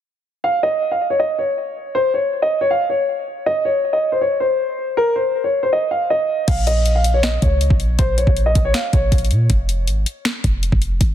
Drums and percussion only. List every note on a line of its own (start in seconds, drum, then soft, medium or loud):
6.48 kick loud
6.48 closed hi-hat medium
6.48 crash loud
6.67 closed hi-hat medium
6.86 closed hi-hat medium
7.04 closed hi-hat medium
7.23 finger snap medium
7.23 snare loud
7.23 closed hi-hat medium
7.42 kick loud
7.42 closed hi-hat medium
7.61 closed hi-hat medium
7.70 kick loud
7.80 closed hi-hat medium
7.99 kick loud
7.99 closed hi-hat medium
8.18 closed hi-hat medium
8.27 kick medium
8.37 closed hi-hat medium
8.55 kick loud
8.55 closed hi-hat medium
8.74 finger snap medium
8.74 snare loud
8.74 closed hi-hat medium
8.93 kick loud
8.93 closed hi-hat medium
9.12 kick medium
9.12 closed hi-hat medium
9.18 closed hi-hat medium
9.25 closed hi-hat soft
9.31 closed hi-hat medium
9.50 kick loud
9.50 closed hi-hat medium
9.69 closed hi-hat medium
9.88 closed hi-hat medium
10.06 closed hi-hat medium
10.25 finger snap medium
10.25 snare loud
10.25 closed hi-hat medium
10.44 kick loud
10.44 closed hi-hat medium
10.63 closed hi-hat medium
10.72 kick loud
10.82 closed hi-hat medium
11.01 kick loud
11.01 closed hi-hat medium